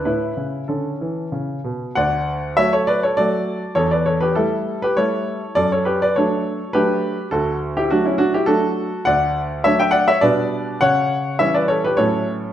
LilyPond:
<<
  \new Staff \with { instrumentName = "Grand piano" } { \time 3/4 \key d \major \tempo 4 = 102 <e' b'>4 <cis' a'>4 r4 | <d'' fis''>4 <cis'' e''>16 <a' cis''>16 <b' d''>16 <a' cis''>16 <a' d''>4 | <a' cis''>16 <b' d''>16 <a' cis''>16 <g' b'>16 <e' a'>8. <g' b'>16 <a' cis''>4 | <a' d''>16 <a' cis''>16 <g' b'>16 <b' d''>16 <a' cis''>4 <g' b'>4 |
<fis' a'>8. <e' g'>16 <d' fis'>16 <cis' e'>16 <d' fis'>16 <e' g'>16 <fis' a'>4 | <d'' fis''>4 <cis'' e''>16 <e'' g''>16 <d'' fis''>16 <cis'' e''>16 <b' d''>4 | <cis'' fis''>4 <cis'' e''>16 <b' d''>16 <a' cis''>16 <g' b'>16 <a' cis''>4 | }
  \new Staff \with { instrumentName = "Grand piano" } { \clef bass \time 3/4 \key d \major a,8 cis8 d8 e8 cis8 b,8 | d,4 <fis a fis'>4 <fis a fis'>4 | e,4 <g a>4 <g a e'>4 | fis,4 <fis a d'>4 <fis a d'>4 |
d,4 <fis a>4 <fis a d'>4 | d,4 <fis a d'>4 <b, g d'>4 | cis4 <e g cis'>4 <a, fis a cis'>4 | }
>>